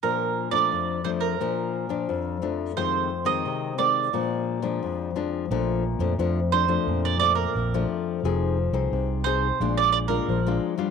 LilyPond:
<<
  \new Staff \with { instrumentName = "Mandolin" } { \time 4/4 \key bes \major \tempo 4 = 88 bes'8. d''8. c''16 bes'4.~ bes'16 r8 | c''8. ees''8. d''2 r8 | r4. c''8. d''16 d''16 bes'8. r8 | r4. c''8. d''16 d''16 bes'8. r8 | }
  \new Staff \with { instrumentName = "Nylon-string guitar" } { \time 4/4 \key bes \major << { <f d'>8. <f a d'>8. <f a d'>8 <f d'>8. <f d'>8. <f a d'>8 | <ees aes c'>8 r16 <ees aes c'>8. <ees aes c'>8 <f aes d'>8. <f aes d'>8. <f aes d'>8 | <f a d'>8 r16 <f a d'>16 <f a d'>16 r16 <f a d'>16 <f a d'>8. <f a d'>8 r16 <f a d'>8. | <c' ees' aes'>8 r16 <c' ees' aes'>8. <c' ees' aes'>16 r16 <aes d' f'>8. <aes d' f'>8 <aes d' f'>8 <g d' f'>16 | } \\ { bes,4 f,4 bes,4 f,4 | f,4 c4 bes,4 f,4 | bes,4 f,4 bes,4 f,4 | f4 c4 bes,4 f4 | } >> }
  \new Staff \with { instrumentName = "Fingered electric bass" } { \clef bass \time 4/4 \key bes \major r1 | r1 | bes,,8. f,16 f,4 f,4 bes,,8 r8 | f,,8. c,16 c,4 bes,,4 bes,,8 r8 | }
>>